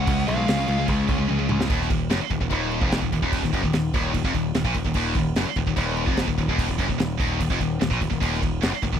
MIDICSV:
0, 0, Header, 1, 8, 480
1, 0, Start_track
1, 0, Key_signature, -6, "minor"
1, 0, Tempo, 406780
1, 86, Time_signature, 4, 2, 24, 8
1, 10619, End_track
2, 0, Start_track
2, 0, Title_t, "Lead electric guitar"
2, 0, Program_c, 0, 29
2, 0, Note_on_c, 0, 78, 88
2, 327, Note_off_c, 0, 78, 0
2, 331, Note_on_c, 0, 77, 86
2, 1000, Note_off_c, 0, 77, 0
2, 10619, End_track
3, 0, Start_track
3, 0, Title_t, "Distorted electric guitar"
3, 0, Program_c, 1, 30
3, 96, Note_on_c, 1, 61, 99
3, 104, Note_on_c, 1, 65, 115
3, 107, Note_on_c, 1, 68, 111
3, 796, Note_off_c, 1, 61, 0
3, 799, Note_off_c, 1, 65, 0
3, 801, Note_off_c, 1, 68, 0
3, 816, Note_on_c, 1, 68, 81
3, 823, Note_on_c, 1, 65, 83
3, 826, Note_on_c, 1, 61, 81
3, 1515, Note_off_c, 1, 68, 0
3, 1518, Note_off_c, 1, 65, 0
3, 1520, Note_off_c, 1, 61, 0
3, 1543, Note_on_c, 1, 61, 86
3, 1551, Note_on_c, 1, 65, 90
3, 1559, Note_on_c, 1, 68, 88
3, 1998, Note_off_c, 1, 61, 0
3, 2002, Note_off_c, 1, 65, 0
3, 2006, Note_off_c, 1, 68, 0
3, 10619, End_track
4, 0, Start_track
4, 0, Title_t, "Distorted electric guitar"
4, 0, Program_c, 2, 30
4, 84, Note_on_c, 2, 49, 89
4, 98, Note_on_c, 2, 56, 90
4, 301, Note_off_c, 2, 49, 0
4, 308, Note_off_c, 2, 56, 0
4, 328, Note_on_c, 2, 56, 88
4, 336, Note_on_c, 2, 49, 66
4, 427, Note_off_c, 2, 56, 0
4, 435, Note_off_c, 2, 49, 0
4, 441, Note_on_c, 2, 56, 86
4, 450, Note_on_c, 2, 49, 64
4, 558, Note_off_c, 2, 49, 0
4, 563, Note_off_c, 2, 56, 0
4, 572, Note_on_c, 2, 49, 80
4, 576, Note_on_c, 2, 56, 78
4, 678, Note_off_c, 2, 56, 0
4, 682, Note_off_c, 2, 49, 0
4, 693, Note_on_c, 2, 56, 82
4, 697, Note_on_c, 2, 49, 71
4, 794, Note_off_c, 2, 56, 0
4, 802, Note_off_c, 2, 49, 0
4, 808, Note_on_c, 2, 56, 80
4, 816, Note_on_c, 2, 49, 66
4, 922, Note_off_c, 2, 56, 0
4, 923, Note_off_c, 2, 49, 0
4, 936, Note_on_c, 2, 56, 86
4, 937, Note_on_c, 2, 49, 64
4, 1043, Note_off_c, 2, 49, 0
4, 1043, Note_off_c, 2, 56, 0
4, 1057, Note_on_c, 2, 49, 87
4, 1057, Note_on_c, 2, 56, 103
4, 1266, Note_off_c, 2, 49, 0
4, 1266, Note_off_c, 2, 56, 0
4, 1291, Note_on_c, 2, 56, 82
4, 1294, Note_on_c, 2, 49, 75
4, 1377, Note_off_c, 2, 56, 0
4, 1380, Note_off_c, 2, 49, 0
4, 1391, Note_on_c, 2, 56, 89
4, 1395, Note_on_c, 2, 49, 67
4, 1492, Note_off_c, 2, 49, 0
4, 1499, Note_off_c, 2, 56, 0
4, 1506, Note_on_c, 2, 49, 85
4, 1513, Note_on_c, 2, 56, 81
4, 1622, Note_off_c, 2, 56, 0
4, 1627, Note_off_c, 2, 49, 0
4, 1636, Note_on_c, 2, 56, 81
4, 1641, Note_on_c, 2, 49, 68
4, 1743, Note_off_c, 2, 56, 0
4, 1747, Note_off_c, 2, 49, 0
4, 1757, Note_on_c, 2, 56, 77
4, 1762, Note_on_c, 2, 49, 62
4, 1865, Note_off_c, 2, 49, 0
4, 1865, Note_off_c, 2, 56, 0
4, 1879, Note_on_c, 2, 49, 69
4, 1879, Note_on_c, 2, 56, 79
4, 1989, Note_on_c, 2, 39, 101
4, 2001, Note_off_c, 2, 49, 0
4, 2001, Note_off_c, 2, 56, 0
4, 2229, Note_off_c, 2, 39, 0
4, 2246, Note_on_c, 2, 39, 66
4, 2436, Note_off_c, 2, 39, 0
4, 2474, Note_on_c, 2, 42, 93
4, 2591, Note_off_c, 2, 42, 0
4, 2717, Note_on_c, 2, 39, 71
4, 2824, Note_off_c, 2, 39, 0
4, 2838, Note_on_c, 2, 39, 67
4, 2933, Note_off_c, 2, 39, 0
4, 2947, Note_on_c, 2, 39, 122
4, 3306, Note_off_c, 2, 39, 0
4, 3311, Note_on_c, 2, 41, 106
4, 3545, Note_off_c, 2, 41, 0
4, 3550, Note_on_c, 2, 39, 79
4, 3667, Note_off_c, 2, 39, 0
4, 3681, Note_on_c, 2, 39, 70
4, 3790, Note_off_c, 2, 39, 0
4, 3805, Note_on_c, 2, 39, 114
4, 4036, Note_off_c, 2, 39, 0
4, 4064, Note_on_c, 2, 39, 80
4, 4168, Note_off_c, 2, 39, 0
4, 4173, Note_on_c, 2, 42, 100
4, 4280, Note_off_c, 2, 42, 0
4, 4303, Note_on_c, 2, 39, 69
4, 4388, Note_off_c, 2, 39, 0
4, 4402, Note_on_c, 2, 39, 67
4, 4594, Note_off_c, 2, 39, 0
4, 4648, Note_on_c, 2, 39, 92
4, 4873, Note_off_c, 2, 39, 0
4, 4887, Note_on_c, 2, 39, 85
4, 5004, Note_off_c, 2, 39, 0
4, 5010, Note_on_c, 2, 41, 99
4, 5118, Note_off_c, 2, 41, 0
4, 5126, Note_on_c, 2, 39, 72
4, 5316, Note_off_c, 2, 39, 0
4, 5373, Note_on_c, 2, 39, 78
4, 5483, Note_on_c, 2, 46, 106
4, 5487, Note_off_c, 2, 39, 0
4, 5595, Note_off_c, 2, 46, 0
4, 5604, Note_on_c, 2, 39, 69
4, 5702, Note_off_c, 2, 39, 0
4, 5716, Note_on_c, 2, 39, 76
4, 5831, Note_off_c, 2, 39, 0
4, 5845, Note_on_c, 2, 39, 106
4, 6076, Note_off_c, 2, 39, 0
4, 6092, Note_on_c, 2, 39, 77
4, 6279, Note_off_c, 2, 39, 0
4, 6331, Note_on_c, 2, 42, 108
4, 6439, Note_off_c, 2, 42, 0
4, 6570, Note_on_c, 2, 39, 70
4, 6675, Note_off_c, 2, 39, 0
4, 6689, Note_on_c, 2, 39, 75
4, 6785, Note_off_c, 2, 39, 0
4, 6799, Note_on_c, 2, 39, 115
4, 7148, Note_off_c, 2, 39, 0
4, 7153, Note_on_c, 2, 41, 106
4, 7391, Note_off_c, 2, 41, 0
4, 7402, Note_on_c, 2, 39, 79
4, 7511, Note_off_c, 2, 39, 0
4, 7526, Note_on_c, 2, 39, 80
4, 7645, Note_off_c, 2, 39, 0
4, 7661, Note_on_c, 2, 39, 97
4, 7885, Note_off_c, 2, 39, 0
4, 7907, Note_on_c, 2, 39, 68
4, 8015, Note_off_c, 2, 39, 0
4, 8021, Note_on_c, 2, 42, 102
4, 8125, Note_off_c, 2, 42, 0
4, 8140, Note_on_c, 2, 39, 76
4, 8239, Note_off_c, 2, 39, 0
4, 8254, Note_on_c, 2, 39, 68
4, 8441, Note_off_c, 2, 39, 0
4, 8501, Note_on_c, 2, 39, 99
4, 8726, Note_off_c, 2, 39, 0
4, 8746, Note_on_c, 2, 39, 85
4, 8852, Note_off_c, 2, 39, 0
4, 8857, Note_on_c, 2, 41, 105
4, 8964, Note_off_c, 2, 41, 0
4, 8986, Note_on_c, 2, 39, 70
4, 9168, Note_off_c, 2, 39, 0
4, 9214, Note_on_c, 2, 39, 85
4, 9325, Note_on_c, 2, 46, 110
4, 9330, Note_off_c, 2, 39, 0
4, 9439, Note_off_c, 2, 46, 0
4, 9448, Note_on_c, 2, 39, 63
4, 9548, Note_off_c, 2, 39, 0
4, 9562, Note_on_c, 2, 39, 80
4, 9673, Note_off_c, 2, 39, 0
4, 9687, Note_on_c, 2, 39, 111
4, 9920, Note_off_c, 2, 39, 0
4, 9933, Note_on_c, 2, 39, 73
4, 10122, Note_off_c, 2, 39, 0
4, 10171, Note_on_c, 2, 42, 92
4, 10282, Note_off_c, 2, 42, 0
4, 10431, Note_on_c, 2, 39, 80
4, 10534, Note_off_c, 2, 39, 0
4, 10548, Note_on_c, 2, 39, 78
4, 10619, Note_off_c, 2, 39, 0
4, 10619, End_track
5, 0, Start_track
5, 0, Title_t, "Picked electric bass"
5, 0, Program_c, 3, 34
5, 86, Note_on_c, 3, 37, 101
5, 283, Note_off_c, 3, 37, 0
5, 333, Note_on_c, 3, 35, 99
5, 527, Note_off_c, 3, 35, 0
5, 567, Note_on_c, 3, 37, 88
5, 763, Note_off_c, 3, 37, 0
5, 809, Note_on_c, 3, 37, 92
5, 1004, Note_off_c, 3, 37, 0
5, 1048, Note_on_c, 3, 37, 108
5, 1244, Note_off_c, 3, 37, 0
5, 1284, Note_on_c, 3, 37, 92
5, 1481, Note_off_c, 3, 37, 0
5, 1542, Note_on_c, 3, 37, 86
5, 1732, Note_off_c, 3, 37, 0
5, 1780, Note_on_c, 3, 37, 98
5, 1970, Note_off_c, 3, 37, 0
5, 2007, Note_on_c, 3, 27, 94
5, 2228, Note_off_c, 3, 27, 0
5, 2246, Note_on_c, 3, 27, 79
5, 2468, Note_off_c, 3, 27, 0
5, 2500, Note_on_c, 3, 30, 102
5, 2603, Note_off_c, 3, 30, 0
5, 2730, Note_on_c, 3, 27, 73
5, 2838, Note_off_c, 3, 27, 0
5, 2844, Note_on_c, 3, 27, 77
5, 2954, Note_off_c, 3, 27, 0
5, 2967, Note_on_c, 3, 27, 106
5, 3299, Note_off_c, 3, 27, 0
5, 3324, Note_on_c, 3, 29, 99
5, 3546, Note_off_c, 3, 29, 0
5, 3569, Note_on_c, 3, 27, 83
5, 3677, Note_off_c, 3, 27, 0
5, 3684, Note_on_c, 3, 27, 82
5, 3795, Note_off_c, 3, 27, 0
5, 3801, Note_on_c, 3, 27, 101
5, 4024, Note_off_c, 3, 27, 0
5, 4050, Note_on_c, 3, 27, 84
5, 4158, Note_off_c, 3, 27, 0
5, 4170, Note_on_c, 3, 30, 100
5, 4278, Note_off_c, 3, 30, 0
5, 4291, Note_on_c, 3, 27, 74
5, 4398, Note_off_c, 3, 27, 0
5, 4426, Note_on_c, 3, 27, 82
5, 4638, Note_off_c, 3, 27, 0
5, 4652, Note_on_c, 3, 27, 103
5, 4870, Note_off_c, 3, 27, 0
5, 4899, Note_on_c, 3, 27, 97
5, 5002, Note_off_c, 3, 27, 0
5, 5010, Note_on_c, 3, 29, 87
5, 5118, Note_off_c, 3, 29, 0
5, 5125, Note_on_c, 3, 27, 82
5, 5347, Note_off_c, 3, 27, 0
5, 5371, Note_on_c, 3, 27, 87
5, 5474, Note_off_c, 3, 27, 0
5, 5481, Note_on_c, 3, 34, 104
5, 5593, Note_off_c, 3, 34, 0
5, 5607, Note_on_c, 3, 27, 76
5, 5716, Note_off_c, 3, 27, 0
5, 5723, Note_on_c, 3, 27, 74
5, 5834, Note_off_c, 3, 27, 0
5, 5843, Note_on_c, 3, 27, 97
5, 6065, Note_off_c, 3, 27, 0
5, 6079, Note_on_c, 3, 27, 83
5, 6303, Note_off_c, 3, 27, 0
5, 6333, Note_on_c, 3, 30, 95
5, 6440, Note_off_c, 3, 30, 0
5, 6570, Note_on_c, 3, 27, 93
5, 6678, Note_off_c, 3, 27, 0
5, 6685, Note_on_c, 3, 27, 79
5, 6795, Note_off_c, 3, 27, 0
5, 6808, Note_on_c, 3, 27, 115
5, 7140, Note_off_c, 3, 27, 0
5, 7164, Note_on_c, 3, 29, 98
5, 7387, Note_off_c, 3, 29, 0
5, 7412, Note_on_c, 3, 27, 74
5, 7520, Note_off_c, 3, 27, 0
5, 7537, Note_on_c, 3, 27, 84
5, 7642, Note_off_c, 3, 27, 0
5, 7659, Note_on_c, 3, 27, 90
5, 7875, Note_off_c, 3, 27, 0
5, 7898, Note_on_c, 3, 27, 76
5, 8003, Note_off_c, 3, 27, 0
5, 8011, Note_on_c, 3, 30, 90
5, 8119, Note_off_c, 3, 30, 0
5, 8142, Note_on_c, 3, 27, 80
5, 8234, Note_off_c, 3, 27, 0
5, 8241, Note_on_c, 3, 27, 95
5, 8466, Note_off_c, 3, 27, 0
5, 8496, Note_on_c, 3, 27, 99
5, 8714, Note_off_c, 3, 27, 0
5, 8741, Note_on_c, 3, 27, 97
5, 8845, Note_off_c, 3, 27, 0
5, 8854, Note_on_c, 3, 29, 85
5, 8962, Note_off_c, 3, 29, 0
5, 8979, Note_on_c, 3, 27, 84
5, 9196, Note_off_c, 3, 27, 0
5, 9223, Note_on_c, 3, 27, 88
5, 9327, Note_off_c, 3, 27, 0
5, 9333, Note_on_c, 3, 34, 98
5, 9442, Note_off_c, 3, 34, 0
5, 9450, Note_on_c, 3, 27, 82
5, 9560, Note_off_c, 3, 27, 0
5, 9576, Note_on_c, 3, 27, 80
5, 9683, Note_off_c, 3, 27, 0
5, 9697, Note_on_c, 3, 27, 99
5, 9916, Note_off_c, 3, 27, 0
5, 9940, Note_on_c, 3, 27, 70
5, 10158, Note_off_c, 3, 27, 0
5, 10202, Note_on_c, 3, 30, 105
5, 10297, Note_off_c, 3, 30, 0
5, 10421, Note_on_c, 3, 27, 79
5, 10527, Note_off_c, 3, 27, 0
5, 10539, Note_on_c, 3, 27, 82
5, 10619, Note_off_c, 3, 27, 0
5, 10619, End_track
6, 0, Start_track
6, 0, Title_t, "Muted distorted electric guitar strokes"
6, 2608, Note_on_c, 9, 29, 66
6, 2726, Note_off_c, 9, 29, 0
6, 6470, Note_on_c, 9, 29, 65
6, 6588, Note_off_c, 9, 29, 0
6, 10313, Note_on_c, 9, 29, 59
6, 10431, Note_off_c, 9, 29, 0
6, 10619, End_track
7, 0, Start_track
7, 0, Title_t, "Muted picked electric bass strokes"
7, 2630, Note_on_c, 9, 29, 38
7, 2748, Note_off_c, 9, 29, 0
7, 6466, Note_on_c, 9, 29, 46
7, 6584, Note_off_c, 9, 29, 0
7, 10332, Note_on_c, 9, 29, 46
7, 10450, Note_off_c, 9, 29, 0
7, 10619, End_track
8, 0, Start_track
8, 0, Title_t, "Drums"
8, 85, Note_on_c, 9, 36, 127
8, 87, Note_on_c, 9, 49, 95
8, 203, Note_off_c, 9, 36, 0
8, 205, Note_off_c, 9, 49, 0
8, 214, Note_on_c, 9, 38, 29
8, 331, Note_on_c, 9, 49, 62
8, 332, Note_off_c, 9, 38, 0
8, 449, Note_off_c, 9, 49, 0
8, 568, Note_on_c, 9, 49, 91
8, 578, Note_on_c, 9, 38, 107
8, 686, Note_off_c, 9, 49, 0
8, 696, Note_off_c, 9, 38, 0
8, 698, Note_on_c, 9, 38, 33
8, 802, Note_on_c, 9, 49, 65
8, 816, Note_off_c, 9, 38, 0
8, 920, Note_off_c, 9, 49, 0
8, 1036, Note_on_c, 9, 49, 80
8, 1042, Note_on_c, 9, 36, 84
8, 1154, Note_off_c, 9, 49, 0
8, 1160, Note_off_c, 9, 36, 0
8, 1279, Note_on_c, 9, 49, 59
8, 1281, Note_on_c, 9, 36, 88
8, 1397, Note_off_c, 9, 49, 0
8, 1399, Note_off_c, 9, 36, 0
8, 1525, Note_on_c, 9, 48, 57
8, 1643, Note_off_c, 9, 48, 0
8, 1760, Note_on_c, 9, 45, 99
8, 1878, Note_off_c, 9, 45, 0
8, 1896, Note_on_c, 9, 38, 98
8, 2004, Note_on_c, 9, 36, 107
8, 2004, Note_on_c, 9, 49, 82
8, 2014, Note_off_c, 9, 38, 0
8, 2122, Note_off_c, 9, 36, 0
8, 2122, Note_off_c, 9, 49, 0
8, 2143, Note_on_c, 9, 38, 32
8, 2244, Note_on_c, 9, 36, 101
8, 2248, Note_on_c, 9, 49, 64
8, 2261, Note_off_c, 9, 38, 0
8, 2362, Note_off_c, 9, 36, 0
8, 2366, Note_off_c, 9, 49, 0
8, 2481, Note_on_c, 9, 49, 70
8, 2490, Note_on_c, 9, 38, 109
8, 2599, Note_off_c, 9, 49, 0
8, 2608, Note_off_c, 9, 38, 0
8, 2716, Note_on_c, 9, 49, 51
8, 2721, Note_on_c, 9, 36, 89
8, 2834, Note_off_c, 9, 49, 0
8, 2839, Note_off_c, 9, 36, 0
8, 2841, Note_on_c, 9, 36, 88
8, 2957, Note_on_c, 9, 49, 73
8, 2959, Note_off_c, 9, 36, 0
8, 2960, Note_on_c, 9, 36, 87
8, 3075, Note_off_c, 9, 49, 0
8, 3078, Note_off_c, 9, 36, 0
8, 3202, Note_on_c, 9, 49, 54
8, 3320, Note_off_c, 9, 49, 0
8, 3322, Note_on_c, 9, 36, 98
8, 3440, Note_off_c, 9, 36, 0
8, 3443, Note_on_c, 9, 49, 68
8, 3452, Note_on_c, 9, 38, 108
8, 3561, Note_off_c, 9, 49, 0
8, 3566, Note_on_c, 9, 36, 84
8, 3570, Note_off_c, 9, 38, 0
8, 3684, Note_off_c, 9, 36, 0
8, 3686, Note_on_c, 9, 36, 77
8, 3688, Note_on_c, 9, 49, 62
8, 3803, Note_off_c, 9, 36, 0
8, 3803, Note_on_c, 9, 36, 83
8, 3806, Note_off_c, 9, 49, 0
8, 3921, Note_off_c, 9, 36, 0
8, 3925, Note_on_c, 9, 36, 103
8, 3925, Note_on_c, 9, 49, 89
8, 4043, Note_off_c, 9, 36, 0
8, 4043, Note_off_c, 9, 49, 0
8, 4048, Note_on_c, 9, 36, 75
8, 4062, Note_on_c, 9, 38, 30
8, 4166, Note_off_c, 9, 36, 0
8, 4167, Note_on_c, 9, 36, 89
8, 4174, Note_on_c, 9, 49, 60
8, 4180, Note_off_c, 9, 38, 0
8, 4285, Note_off_c, 9, 36, 0
8, 4286, Note_on_c, 9, 36, 91
8, 4292, Note_off_c, 9, 49, 0
8, 4403, Note_on_c, 9, 49, 82
8, 4404, Note_off_c, 9, 36, 0
8, 4412, Note_on_c, 9, 38, 98
8, 4521, Note_off_c, 9, 49, 0
8, 4530, Note_off_c, 9, 38, 0
8, 4646, Note_on_c, 9, 49, 68
8, 4647, Note_on_c, 9, 36, 105
8, 4764, Note_off_c, 9, 49, 0
8, 4765, Note_off_c, 9, 36, 0
8, 4887, Note_on_c, 9, 36, 88
8, 4888, Note_on_c, 9, 49, 80
8, 5005, Note_off_c, 9, 36, 0
8, 5006, Note_off_c, 9, 49, 0
8, 5006, Note_on_c, 9, 36, 91
8, 5124, Note_off_c, 9, 36, 0
8, 5125, Note_on_c, 9, 36, 80
8, 5125, Note_on_c, 9, 49, 60
8, 5243, Note_off_c, 9, 36, 0
8, 5243, Note_off_c, 9, 49, 0
8, 5362, Note_on_c, 9, 49, 78
8, 5371, Note_on_c, 9, 38, 112
8, 5480, Note_off_c, 9, 49, 0
8, 5483, Note_on_c, 9, 36, 99
8, 5489, Note_off_c, 9, 38, 0
8, 5595, Note_on_c, 9, 49, 64
8, 5601, Note_off_c, 9, 36, 0
8, 5601, Note_on_c, 9, 36, 87
8, 5713, Note_off_c, 9, 49, 0
8, 5719, Note_off_c, 9, 36, 0
8, 5720, Note_on_c, 9, 36, 84
8, 5828, Note_on_c, 9, 49, 94
8, 5838, Note_off_c, 9, 36, 0
8, 5839, Note_on_c, 9, 36, 115
8, 5946, Note_off_c, 9, 49, 0
8, 5957, Note_off_c, 9, 36, 0
8, 6074, Note_on_c, 9, 49, 66
8, 6081, Note_on_c, 9, 36, 90
8, 6192, Note_off_c, 9, 49, 0
8, 6199, Note_off_c, 9, 36, 0
8, 6320, Note_on_c, 9, 49, 84
8, 6329, Note_on_c, 9, 38, 111
8, 6438, Note_off_c, 9, 49, 0
8, 6447, Note_off_c, 9, 38, 0
8, 6557, Note_on_c, 9, 49, 65
8, 6564, Note_on_c, 9, 36, 101
8, 6675, Note_off_c, 9, 49, 0
8, 6682, Note_off_c, 9, 36, 0
8, 6685, Note_on_c, 9, 36, 93
8, 6801, Note_on_c, 9, 49, 81
8, 6803, Note_off_c, 9, 36, 0
8, 6805, Note_on_c, 9, 36, 95
8, 6919, Note_off_c, 9, 49, 0
8, 6923, Note_off_c, 9, 36, 0
8, 7042, Note_on_c, 9, 49, 58
8, 7160, Note_off_c, 9, 49, 0
8, 7167, Note_on_c, 9, 36, 92
8, 7279, Note_on_c, 9, 49, 69
8, 7285, Note_off_c, 9, 36, 0
8, 7289, Note_on_c, 9, 38, 100
8, 7397, Note_off_c, 9, 49, 0
8, 7407, Note_off_c, 9, 38, 0
8, 7409, Note_on_c, 9, 36, 91
8, 7527, Note_off_c, 9, 36, 0
8, 7527, Note_on_c, 9, 36, 87
8, 7529, Note_on_c, 9, 49, 57
8, 7645, Note_off_c, 9, 36, 0
8, 7647, Note_off_c, 9, 49, 0
8, 7649, Note_on_c, 9, 36, 83
8, 7767, Note_off_c, 9, 36, 0
8, 7770, Note_on_c, 9, 36, 112
8, 7775, Note_on_c, 9, 49, 94
8, 7888, Note_off_c, 9, 36, 0
8, 7891, Note_on_c, 9, 36, 74
8, 7893, Note_off_c, 9, 49, 0
8, 8009, Note_off_c, 9, 36, 0
8, 8009, Note_on_c, 9, 36, 86
8, 8010, Note_on_c, 9, 49, 57
8, 8127, Note_off_c, 9, 36, 0
8, 8128, Note_off_c, 9, 49, 0
8, 8132, Note_on_c, 9, 36, 82
8, 8250, Note_off_c, 9, 36, 0
8, 8254, Note_on_c, 9, 49, 70
8, 8263, Note_on_c, 9, 38, 107
8, 8372, Note_off_c, 9, 49, 0
8, 8381, Note_off_c, 9, 38, 0
8, 8492, Note_on_c, 9, 36, 107
8, 8498, Note_on_c, 9, 49, 64
8, 8610, Note_off_c, 9, 36, 0
8, 8616, Note_off_c, 9, 49, 0
8, 8732, Note_on_c, 9, 36, 85
8, 8737, Note_on_c, 9, 49, 82
8, 8850, Note_off_c, 9, 36, 0
8, 8852, Note_on_c, 9, 36, 102
8, 8855, Note_off_c, 9, 49, 0
8, 8970, Note_off_c, 9, 36, 0
8, 8973, Note_on_c, 9, 36, 90
8, 8977, Note_on_c, 9, 49, 61
8, 9091, Note_off_c, 9, 36, 0
8, 9095, Note_off_c, 9, 49, 0
8, 9216, Note_on_c, 9, 49, 74
8, 9226, Note_on_c, 9, 38, 103
8, 9333, Note_on_c, 9, 36, 97
8, 9334, Note_off_c, 9, 49, 0
8, 9344, Note_off_c, 9, 38, 0
8, 9451, Note_off_c, 9, 36, 0
8, 9453, Note_on_c, 9, 36, 94
8, 9458, Note_on_c, 9, 49, 69
8, 9571, Note_off_c, 9, 36, 0
8, 9574, Note_on_c, 9, 36, 83
8, 9576, Note_off_c, 9, 49, 0
8, 9692, Note_off_c, 9, 36, 0
8, 9695, Note_on_c, 9, 36, 103
8, 9705, Note_on_c, 9, 49, 87
8, 9813, Note_off_c, 9, 36, 0
8, 9823, Note_off_c, 9, 49, 0
8, 9837, Note_on_c, 9, 38, 30
8, 9937, Note_on_c, 9, 36, 92
8, 9948, Note_on_c, 9, 49, 65
8, 9955, Note_off_c, 9, 38, 0
8, 10055, Note_off_c, 9, 36, 0
8, 10066, Note_off_c, 9, 49, 0
8, 10180, Note_on_c, 9, 49, 93
8, 10189, Note_on_c, 9, 38, 114
8, 10298, Note_off_c, 9, 49, 0
8, 10307, Note_off_c, 9, 38, 0
8, 10415, Note_on_c, 9, 36, 94
8, 10415, Note_on_c, 9, 49, 60
8, 10533, Note_off_c, 9, 36, 0
8, 10533, Note_off_c, 9, 49, 0
8, 10535, Note_on_c, 9, 36, 91
8, 10619, Note_off_c, 9, 36, 0
8, 10619, End_track
0, 0, End_of_file